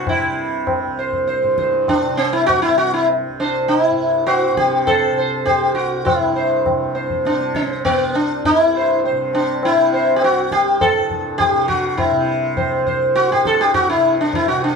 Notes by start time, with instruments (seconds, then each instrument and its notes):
Already playing: tanpura C2 G2 C3
0.07 sitar E4, tabla na, tabla ge
0.21 tanpura C3
0.67 tabla na, tabla ge
0.83 tanpura C2
0.97 sitar C5, tabla te
1.13 tabla ge
1.27 sitar C5, tabla te
1.43 tanpura G2, tabla te
1.58 sitar C5, tabla ke
1.73 tabla te
1.88 sitar D4, tabla na, tabla ge
2.05 tanpura C3
2.17 sitar C4
2.33 sitar E4
2.46 sitar F#4, tabla tin, tabla ge
2.62 sitar E4
2.66 tanpura C3
2.78 sitar F#4
2.94 sitar E4
3.08 tabla tin
3.29 tanpura C2
3.40 sitar D4 C5
3.68 sitar D#4, tabla na
3.83 sitar E4
3.91 tanpura G2
4.26 sitar F#4 C5, tabla na
4.53 tanpura C3
4.57 sitar G4, tabla ke
4.87 sitar A4 C5, tabla na, tabla ge
5.12 tanpura C3
5.18 sitar C5
5.46 sitar G4 C5, tabla tin, tabla ge
5.73 tanpura C2, sitar F#4
6.05 tanpura G2, sitar E4, tabla na, tabla ge
6.36 sitar C5
6.66 tanpura C3, tabla na, tabla ge
6.95 sitar C5, tabla te
7.10 tabla ge
7.25 tanpura C3, sitar D4, tabla te
7.41 tabla te
7.55 sitar C4, tabla ke
7.71 tabla te
7.85 sitar B3, tabla na, tabla ge
7.90 tanpura C2
8.15 sitar D4
8.45 sitar E4, tabla tin, tabla ge
8.49 tanpura G2
8.77 sitar C5
9.04 sitar C5, tabla tin
9.11 tanpura C3
9.33 sitar D4, tabla na
9.63 sitar E4, tabla na
9.70 tanpura C3
9.92 sitar C5, tabla na
10.16 sitar G4
10.22 sitar F#4, tabla na
10.31 tanpura C2
10.52 sitar G4, tabla ke
10.81 sitar A4, tabla na, tabla ge
10.90 tanpura G2
11.10 tabla ge
11.38 sitar G4, tabla na, tabla ge
11.52 tanpura C3
11.68 sitar F#4, tabla ge
11.97 sitar E4, tabla na, tabla ge
12.11 tanpura C3
12.57 sitar C5, tabla na, tabla ge
12.72 tanpura C2
12.87 sitar C5, tabla ge
13.15 sitar F#4, tabla te
13.31 tanpura G2, sitar G4, tabla te
13.45 sitar A4, tabla ke
13.61 sitar G4, tabla te
13.74 sitar F#4, tabla na, tabla ge
13.90 tanpura C3, sitar E4
14.21 sitar D4
14.33 sitar E4, tabla tin, tabla ge
14.48 tanpura C3, sitar F#4
14.62 sitar D4, tabla na